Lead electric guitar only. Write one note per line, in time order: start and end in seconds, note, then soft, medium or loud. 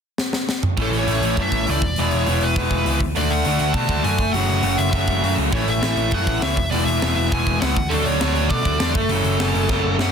0.82 0.95 A4 medium
0.97 1.25 C#5 medium
1.26 1.42 C#5 medium
1.42 1.70 E5 medium
1.71 1.99 D5 medium
2.00 2.44 C#5 medium
2.43 2.98 B4 medium
3.17 3.31 D5 medium
3.30 3.60 F#5 medium
3.61 3.73 F#5 loud
3.73 4.04 A5 loud
4.05 4.32 G#5 medium
4.33 4.80 F#5 loud
4.78 5.34 E5 loud
5.53 5.68 C#5 medium
5.70 5.97 E5 medium
5.98 6.14 E5 medium
6.14 6.44 F#5 medium
6.43 6.70 E5 medium
6.71 6.85 D5 medium
6.85 7.14 E5 medium
7.16 7.31 E5 medium
7.33 7.60 G#5 loud
7.61 7.92 F#5 medium
7.89 8.06 A4 medium
8.05 8.33 C#5 medium
8.34 8.49 C#5 medium
8.49 8.95 D5 loud
8.94 9.95 A4 medium
10.02 10.12 F#5 medium